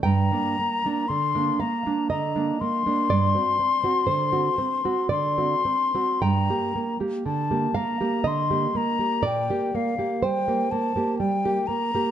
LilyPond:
<<
  \new Staff \with { instrumentName = "Flute" } { \time 3/4 \key g \minor \tempo 4 = 60 bes''4 c'''8 bes''8 bes''8 c'''8~ | c'''2 c'''4 | bes''8 r8 a''8 bes''8 c'''8 bes''8 | g''8 f''8 g''8 a''8 g''8 bes''8 | }
  \new Staff \with { instrumentName = "Nylon-string guitar" } { \time 3/4 \key g \minor << { g''4. f''8 ees''4 | d''4 c''4 d''4 | g''4. f''8 ees''4 | d''4 c''4 r4 | } \\ { g,16 <bes d'>16 bes16 <bes d'>16 d16 <bes d'>16 bes16 <bes d'>16 d16 <bes d'>16 bes16 <bes d'>16 | g,16 <c' fis'>16 c'16 <c' fis'>16 d16 <c' fis'>16 c'16 <c' fis'>16 d16 <c' fis'>16 c'16 <c' fis'>16 | g,16 <bes g'>16 bes16 <bes g'>16 d16 <bes g'>16 bes16 <bes g'>16 d16 <bes g'>16 bes16 <bes g'>16 | bes,16 <bes g'>16 bes16 <bes g'>16 g16 <bes g'>16 bes16 <bes g'>16 g16 <bes g'>16 bes16 <bes g'>16 | } >> }
>>